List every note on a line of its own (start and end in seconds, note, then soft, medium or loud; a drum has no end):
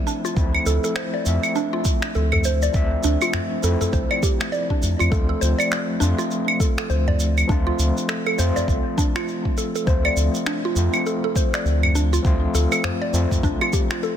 0.00 0.34 F3 medium
0.00 0.36 A3 medium
0.00 0.37 C4 medium
0.00 0.38 E4 medium
0.07 0.17 D4 loud
0.07 shaker medium
0.25 0.65 F4 loud
0.25 shaker soft
0.34 0.59 D2 loud
0.34 1.22 F3 medium
0.34 1.22 A3 medium
0.34 1.23 C4 medium
0.34 1.24 E4 medium
0.34 kick loud
0.34 shaker soft
0.54 claves medium
0.66 0.79 D2 loud
0.66 0.83 A4 medium
0.66 shaker medium
0.84 0.95 A4 medium
0.84 shaker soft
0.96 1.13 C5 medium
0.96 finger snap medium
0.96 shaker soft
1.14 1.54 D5 medium
1.24 1.38 F2 medium
1.24 2.71 F3 medium
1.24 2.71 A3 medium
1.24 2.72 C4 medium
1.24 2.73 E5 medium
1.24 shaker medium
1.43 claves medium
1.43 shaker soft
1.55 1.66 D4 loud
1.55 shaker soft
1.73 2.13 F4 loud
1.85 kick loud
1.85 shaker medium
2.02 finger snap medium
2.02 shaker soft
2.14 2.69 D2 medium
2.14 2.31 A4 medium
2.14 shaker soft
2.32 2.43 A4 medium
2.32 udu medium
2.32 claves medium
2.44 2.62 C5 medium
2.44 shaker medium
2.62 3.03 D5 medium
2.62 shaker soft
2.72 2.97 D2 medium
2.72 3.59 F3 medium
2.72 3.60 A3 medium
2.72 3.61 C4 medium
2.72 3.61 E5 loud
2.72 kick loud
2.72 shaker soft
3.03 3.17 D2 loud
3.03 3.14 D4 loud
3.03 shaker medium
3.21 3.62 F4 medium
3.21 claves medium
3.21 shaker soft
3.33 finger snap medium
3.33 udu medium
3.33 shaker soft
3.62 3.76 F2 medium
3.62 3.79 F3 medium
3.62 3.79 A3 medium
3.62 3.80 C4 medium
3.62 3.80 E4 medium
3.62 3.80 A4 medium
3.62 shaker medium
3.81 3.92 A4 medium
3.81 udu medium
3.81 shaker soft
3.93 4.06 C2 medium
3.93 4.10 C5 medium
3.93 kick medium
3.93 shaker soft
4.11 4.21 D5 medium
4.11 claves medium
4.23 4.39 G4 medium
4.23 kick medium
4.23 shaker medium
4.40 4.52 A3 medium
4.40 finger snap medium
4.40 shaker soft
4.52 4.68 D5 medium
4.52 shaker soft
4.70 4.81 D4 medium
4.70 kick medium
4.82 4.95 F2 medium
4.82 shaker medium
4.99 5.09 F2 loud
4.99 5.10 F4 medium
4.99 claves medium
4.99 shaker soft
5.10 5.34 D2 medium
5.10 5.97 F3 medium
5.10 5.97 A3 medium
5.10 5.98 C4 medium
5.10 5.99 F4 medium
5.10 5.28 A4 medium
5.10 kick loud
5.10 shaker soft
5.29 5.40 A4 medium
5.41 5.54 D2 loud
5.41 5.58 C5 medium
5.41 shaker medium
5.58 5.99 D5 medium
5.58 claves medium
5.58 shaker soft
5.72 finger snap medium
5.72 shaker soft
5.99 6.14 F2 medium
5.99 7.46 F3 medium
5.99 7.46 A3 medium
5.99 7.47 C4 medium
5.99 6.11 D4 loud
5.99 7.48 F4 medium
5.99 shaker medium
6.18 6.59 F4 loud
6.18 shaker soft
6.31 shaker soft
6.48 claves medium
6.60 6.77 A4 medium
6.60 kick medium
6.60 shaker medium
6.78 6.89 A4 medium
6.78 finger snap medium
6.78 shaker soft
6.90 7.44 D2 medium
6.90 7.07 C5 medium
6.90 shaker soft
7.07 7.48 D5 medium
7.07 udu medium
7.20 shaker medium
7.38 claves medium
7.38 shaker soft
7.47 7.72 D2 loud
7.47 8.35 F3 medium
7.47 8.35 A3 medium
7.47 8.36 C4 medium
7.47 7.59 D4 medium
7.47 8.37 F4 loud
7.47 kick loud
7.47 shaker soft
7.67 8.07 F4 loud
7.79 7.92 D2 loud
7.79 shaker medium
7.97 shaker soft
8.09 8.25 A4 medium
8.09 finger snap medium
8.09 shaker soft
8.26 8.37 A4 medium
8.26 claves medium
8.38 8.51 F2 medium
8.38 8.54 F3 medium
8.38 8.55 A3 medium
8.38 8.55 C4 medium
8.38 8.55 F4 medium
8.38 8.55 C5 medium
8.38 shaker medium
8.56 8.97 D5 medium
8.56 udu medium
8.56 shaker soft
8.68 8.81 C2 medium
8.68 kick medium
8.68 shaker soft
8.98 9.08 D4 loud
8.98 kick medium
8.98 shaker medium
9.16 9.56 F4 loud
9.16 finger snap medium
9.16 claves medium
9.16 shaker soft
9.28 shaker soft
9.45 kick medium
9.57 9.74 A4 medium
9.57 shaker medium
9.75 9.86 A4 medium
9.75 shaker soft
9.85 10.10 D2 loud
9.85 10.72 F3 medium
9.85 10.73 A3 medium
9.85 10.74 C4 medium
9.85 10.04 C5 medium
9.85 kick loud
9.85 shaker soft
9.90 10.75 F4 medium
10.05 10.45 D5 medium
10.05 claves medium
10.16 10.29 D2 loud
10.16 shaker medium
10.35 shaker soft
10.46 10.57 D4 loud
10.46 finger snap medium
10.46 shaker soft
10.65 11.05 F4 medium
10.75 10.89 F2 medium
10.75 12.21 F3 medium
10.75 12.22 A3 medium
10.75 12.22 C4 medium
10.75 12.23 F4 medium
10.75 shaker medium
10.94 claves medium
10.94 shaker soft
11.06 11.23 A4 medium
11.06 shaker soft
11.24 11.35 A4 medium
11.36 11.53 C5 medium
11.36 kick medium
11.36 shaker medium
11.54 11.94 D5 medium
11.54 finger snap medium
11.54 shaker soft
11.65 12.19 D2 medium
11.65 shaker soft
11.83 udu medium
11.83 claves medium
11.95 12.05 D4 loud
11.95 shaker medium
12.13 12.53 F4 loud
12.13 shaker soft
12.23 12.48 D2 loud
12.23 13.10 F3 medium
12.23 13.11 A3 medium
12.23 13.11 C4 medium
12.23 13.12 F4 loud
12.23 kick loud
12.23 shaker soft
12.54 12.67 D2 loud
12.54 12.71 A4 medium
12.54 shaker medium
12.72 12.83 A4 medium
12.72 claves medium
12.72 shaker soft
12.84 13.01 C5 medium
12.84 finger snap medium
12.84 udu medium
12.84 shaker soft
13.02 13.42 D5 medium
13.13 13.26 F2 medium
13.13 13.29 F3 medium
13.13 13.30 A3 medium
13.13 13.30 C4 medium
13.13 13.31 F4 medium
13.13 shaker medium
13.31 kick medium
13.31 udu medium
13.31 shaker soft
13.43 13.56 C2 medium
13.43 13.54 D4 loud
13.43 kick medium
13.43 shaker soft
13.61 13.72 F4 loud
13.61 claves medium
13.73 13.90 G4 medium
13.73 kick medium
13.73 shaker medium
13.91 14.02 F4 medium
13.91 finger snap medium
13.91 shaker soft
14.03 14.13 A4 loud
14.03 shaker soft